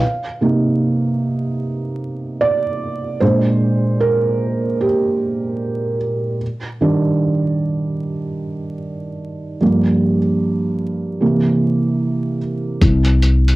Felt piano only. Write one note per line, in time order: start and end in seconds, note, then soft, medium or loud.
0.00 0.24 F5 medium
0.41 3.17 C3 medium
0.41 3.18 A#3 soft
0.41 3.18 D#4 soft
2.41 3.17 D5 medium
3.20 6.37 A#2 soft
3.20 6.38 G#3 soft
3.20 6.38 D4 soft
3.20 3.97 C5 medium
4.01 4.83 A#4 medium
4.81 5.97 G4 medium
6.81 9.57 D#3 medium
6.81 9.58 G3 soft
6.81 9.58 D4 medium
9.61 10.18 G2 soft
9.61 10.18 F3 soft
9.61 10.19 A#3 medium
11.21 12.37 C3 soft
11.21 12.37 E3 soft
11.21 12.38 A#3 medium